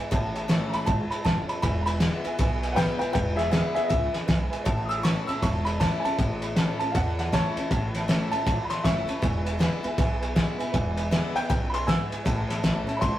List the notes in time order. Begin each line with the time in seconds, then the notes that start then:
Already playing: G#2
0.11 A1 A2 C#5 E5 A5, kick, ride
0.34 C#5 E5 A5, ride
0.48 E3 A3 C#4 E4 C#5 E5 A5, snare, ride
0.69 C#5 E5 A#5
0.73 A5 B5, muted upright bass stroke, ride
0.86 G#1 G#2 C#5 E5 A5, kick, ride
1.09 C#5 E5 A5 B5, muted upright bass stroke, ride
1.25 F#1 F#2 C#5 E5 A5, kick, snare, ride
1.47 C#5 E5 A5 B5, muted upright bass stroke, ride
1.62 E1 E2 B4 E5 G#5 B5, kick, ride
1.81 A#5
1.86 B4 E5 G#5 B5, ride
2.00 D3 G#3 B3 E4 B4 F#5, snare, ride
2.24 B3 E4 B4 E5 G#5, muted upright bass stroke, ride
2.39 B1 B2 B4 E5 G#5, kick, snare, ride
2.61 B4 E5 G#5, ride
2.72 B4 F#5
2.76 D3 G#3 B3 E4 E5 G5, kick, snare, ride
2.98 B3 E4 B4 E5 G5 G#5, muted upright bass stroke, ride
3.12 E1 E2 B4 E5 G5 G#5, kick, ride
3.36 G#4 B4 E5 G#5, snare, ride
3.50 D3 G#3 B3 E4 G#4 B4 E5 G#5, snare, ride
3.74 B3 E4 G#4 B4 E5 F#5, muted upright bass stroke, ride
3.85 D#5
3.89 C#2 F#2 B4 E5 G#5, kick, ride
4.13 B4 E5 G#5, snare, ride
4.26 B1 G#2 B4 E5 G#5, kick, snare, ride
4.50 B4 E5 G#5, ride
4.64 A1 A2 C#5 E5 A5, kick, ride
4.85 D#6 E6
4.89 C#5 E5 G#5, ride
5.03 E3 A3 C#4 E4 C#5 A5 C#6, snare, ride
5.27 C#4 E4 C#5 E5 A5 E6, muted upright bass stroke, ride
5.42 E1 E2 C#5 E5 A5 C#6, kick, snare, ride
5.65 C#5 E5 A5 B5, ride
5.80 E3 A3 C#4 E4 C#5 E5 A5, kick, snare, ride
6.00 C#5 G#5
6.04 C#4 E4 E5 A5, muted upright bass stroke, ride
6.17 A1 A2 C#5 E5 A5, kick, ride
6.41 C#5 E5 B5, ride
6.55 E3 A3 C#4 E4 C#5 E5 A5, snare, ride
6.79 C#4 E4 C#5 E5 A5, muted upright bass stroke, ride
6.91 E2 C#5 E5 F5, kick, ride
6.95 F#5 A5
7.17 C#5 E5 F#5 A5, snare, ride
7.32 E3 A3 C#4 E4 C#5 E5 A5, kick, snare, ride
7.56 C#4 E4 C#5 E5 A5, muted upright bass stroke, ride
7.70 A1 A2 C#5 E5 A5, kick, ride
7.95 C#5 E5 A5, snare, ride
8.08 E3 A3 C#4 E4 C#5 E5 A5, snare, ride
8.31 C#4 E4 C#5 E5 A5, muted upright bass stroke, ride
8.46 G#1 E2 C#5 E5 A5, kick, snare, ride
8.65 B5
8.70 C#5 E5 A5 C6, muted upright bass stroke, snare, ride
8.83 F#1 E3 A3 C#4 E4 C#5 E5 G#5 C#6, kick, snare, ride
9.08 C#4 E4 C#5 E5 A5, muted upright bass stroke, ride
9.22 E1 E2 B4 E5 G#5, kick, ride
9.45 B4 E5 G#5, ride
9.59 D3 G#3 B3 E4 B4 E5 G#5, snare, ride
9.83 B3 E4 B4 E5 G#5, muted upright bass stroke, ride
9.98 B1 B2 B4 E5 G#5, kick, snare, ride
10.20 B4 E5 G#5, ride
10.34 D3 G#3 B3 E4 B4 E5 G#5, kick, snare, ride
10.58 B3 E4 B4 E5 G#5, muted upright bass stroke, ride
10.72 E1 E2 B4 E5 G#5, kick, ride
10.96 B4 E5 G#5, ride
11.11 D3 G#3 B3 E4 B4 E5 G#5, snare, ride
11.36 B3 E4 B4 E5 G5 G#5, muted upright bass stroke, ride
11.49 B1 F#2 B4 E5 G5 G#5, kick, snare, ride
11.70 B4 E5 B5
11.74 G#5 C6, ride
11.87 G#2 B4 E5 F#5 G#5 E6, kick, snare, ride
12.10 B4 E5 G#5, muted upright bass stroke, ride
12.24 A1 A2 C#5 E5 A5, kick, ride
12.48 C#5 E5 A5, snare, ride
12.62 A1 E3 A3 C#4 E4 C#5 E5 A5, snare, ride
12.85 C#4 E4 C#5 E5 A5, muted upright bass stroke, ride
12.97 C#5 E5 A5 B5
13.01 G#1 G#2 C6, kick, ride